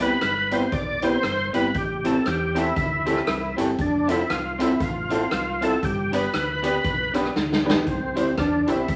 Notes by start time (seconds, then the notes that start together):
Already playing: C2
0.00 B3 C4 E4 G4 B4
0.21 G1, cross-stick, closed hi-hat
0.51 B3 C4 E4 G4 B4 C5, closed hi-hat
0.72 B1 D5, kick, closed hi-hat
1.02 B3 C4 E4 G4 B4 C5, closed hi-hat
1.23 G1, cross-stick, closed hi-hat
1.53 G1 B3 C4 E4 G4 B4, closed hi-hat
1.74 A1 G4, kick, closed hi-hat
2.04 C4 E4 G4 A4, closed hi-hat
2.26 E2 G4, cross-stick, closed hi-hat
2.55 C4 E4 G4 A4, closed hi-hat
2.76 D2, kick, closed hi-hat
3.06 C4 E4 G4 A4, closed hi-hat
3.17 cross-stick
3.27 C2, cross-stick, closed hi-hat
3.57 G1 C4 E4 G4 A4, closed hi-hat
3.78 F1 D4, kick, closed hi-hat
4.07 C4 E4 F4 A4, closed hi-hat
4.30 C2 F4, cross-stick, closed hi-hat
4.59 C4 E4 F4 A4, closed hi-hat
4.80 A1 F4, kick, closed hi-hat
5.10 C4 E4 F4 A4, closed hi-hat
5.31 C2, cross-stick, closed hi-hat
5.61 C4 E4 F4 A4, closed hi-hat
5.83 G1 G4, kick, closed hi-hat
6.12 B3 D4 G4 B4, closed hi-hat
6.33 D2 B4, cross-stick, closed hi-hat
6.63 B3 D4 G4 B4, closed hi-hat
6.84 B1, kick, closed hi-hat
7.14 B3 D4 G4 B4, cross-stick, closed hi-hat
7.25 cross-stick
7.36 D2, snare
7.53 snare
7.64 B3 D4 G4 B4
7.70 snare
7.86 C2 C4, kick, closed hi-hat
8.15 D2 C4 E4 G4 C5, closed hi-hat
8.37 E2 D4, kick, cross-stick, closed hi-hat
8.67 B1 C4 E4 G4 C5, closed hi-hat
8.88 C2, kick, closed hi-hat